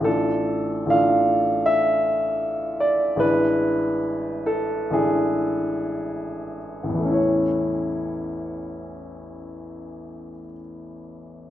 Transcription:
grand piano
0.00 A1 A3 D4 F4 A4
0.86 A1 A3 D4 F5
0.90 F4
1.66 E5
2.80 D5
3.16 A1 G#3 D4 E4 B4
4.46 A4
4.90 A1 G#3 D4 E4 G#4
6.83 A1
6.89 E2
6.94 E3
6.99 A3
7.05 C#4
7.10 E4 C#5

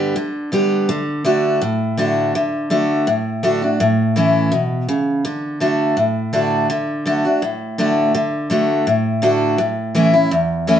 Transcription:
steel-string acoustic guitar
Already playing: G2 D3 G3 B3 G4
0.52 D3 G3 B3 G4
0.89 D3
1.25 D3 A3 D4 F#4
1.61 A2
1.97 D3 A3 D4 F#4
2.35 D3
2.70 D3 A3 D4 F#4
3.07 A2
3.43 D3 A3 D4 F#4
3.62 D4 F#4
3.80 A2
4.16 E3 A3 C#4 E4
4.52 B2
4.89 C#3
5.25 D3
5.60 D3 A3 D4 F#4
5.97 A2
6.33 D3 A3 D4 F#4
6.70 D3
7.05 D3 A3 D4 F#4
7.25 D4 F#4
7.42 A2
7.78 D3 A3 D4 F#4
8.15 D3
8.50 D3 A3 D4 F#4
8.87 A2
9.22 D3 A3 D4 F#4
9.58 A2
9.95 E3 A3 C#4 E4
10.14 C#4 E4
10.31 E2
10.67 E3 A3 C#4 E4

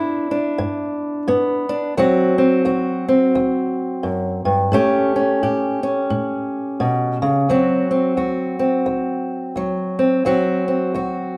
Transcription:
steel-string acoustic guitar
Already playing: G2 B3 D4 E4
0.31 D4
0.58 G2
1.28 G2 B3
1.69 D4
1.97 D2 F#3 C4 F#4
2.38 C4
2.65 D2 F#4
3.08 C4
3.35 D2
4.03 F#2
4.45 G2
4.72 A2 A3 C#4 G4
5.16 C#4
5.43 A2 G4
5.83 C#4
6.10 A2
6.80 B2
7.22 C#3
7.49 D2 F#3 C4 F#4
7.91 C4
8.17 D2 F#4
8.59 C4
8.86 D2
9.56 D2 F#3
9.99 C4
10.25 D2 F#3 C4 F#4
10.68 C4
10.94 D2 F#4

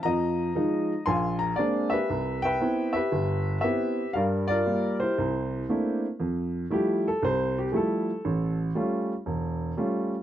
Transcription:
grand piano
0.03 F2 F3 D#5 A#5
0.55 F3 G#3 D#4
1.06 A#1 F5 G#5 C6
1.39 A#5
1.56 G#3 A#3 C4 D4 D5
1.90 G4 B4 E5
2.10 C2
2.42 B4 E5 G5
2.61 B3 C4 E4
2.93 G4 B4 E5
3.12 G1
3.61 B3 C4 E4 G4 B4 E5
4.13 G2 G3 A#4 D5 F5
4.48 F4 A#4 D5
4.66 G3 A#3 F4
5.00 E4 G4 C5
5.18 C2
5.69 A3 A#3 C4 D4 E4
6.20 F2
6.70 F3 G3 A3 E4 G4
7.08 A4
7.23 C2 C5
7.59 G4
7.72 F3 G3 A3 E4 G#4
7.76 A4
8.25 A1
8.75 G3 A3 C#4 F4
9.26 E1
9.77 G3 A3 C#4 F4

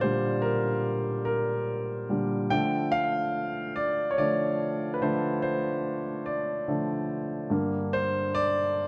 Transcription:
grand piano
Already playing: A#2 D3 G3 D5
0.01 A#2 D3 G3 C5
0.42 A#4
1.25 A#4
2.09 A#2 D3 G3
2.50 D3 F3 A3 G5
2.92 F5
3.76 D5
4.11 C#5
4.18 D3 F3 A3 D5
4.94 B4
5.01 D3 F3 A3 C5
5.42 C5
6.26 D5
6.68 D3 F3 A3
7.50 G2 D3 A#3
7.93 C5
8.35 D5

